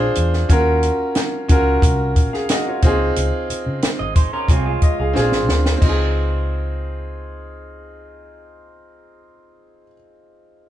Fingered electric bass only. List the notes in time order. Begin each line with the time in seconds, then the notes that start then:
0.17 E2
0.50 D#2
1.50 C#2
1.83 C2
2.16 A#1
2.83 C#2
3.17 C#2
3.50 muted fingered electric bass stroke
3.66 C#3
3.84 muted fingered electric bass stroke
4.00 G#1
4.49 C2
5.00 C#2
5.16 A#1
5.32 G#1
5.48 D2
5.82 C#2